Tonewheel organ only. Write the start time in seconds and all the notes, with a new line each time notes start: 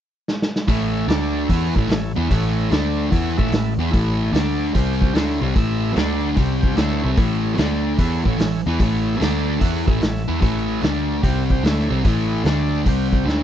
0.67 E4 A4 C#5
1.08 D4 A4 D5
1.47 E4 A4 C#5
1.77 E4 A4 C#5
2.28 E4 A4 C#5
2.72 D4 A4 D5
3.11 E4 A4 C#5
3.37 E4 A4 E5
3.91 E4 A4 C#5
4.32 D4 A4 D5
4.75 C4 G4 C5
5.01 C4 G4 C5
5.15 E4 A4 C#5
5.58 E4 A4 E5
5.96 D4 A4 D5
6.35 C4 G4 C5
6.60 C4 G4 C5
6.76 E4 A4 C#5
7.16 E4 A4 C#5
7.59 D4 A4 D5
8.01 E4 A4 C#5
8.26 E4 A4 C#5
8.81 E4 A4 C#5
9.22 D4 A4 D5
9.51 B5
9.58 E4 A4 F#5 A5
9.64 C#5
9.86 E4 A4 C#5 E5
10.04 E5
10.41 E4 A4 C#5
10.81 D4 A4 D5
11.23 C4 G4 C5
11.51 C4 G4 C5
11.64 E4 A4 C#5
12.06 E4 A4 C#5
12.48 D4 A4 D5
12.88 C4 G4 C5
13.12 C4 G4 C5
13.28 E4 A4 C#5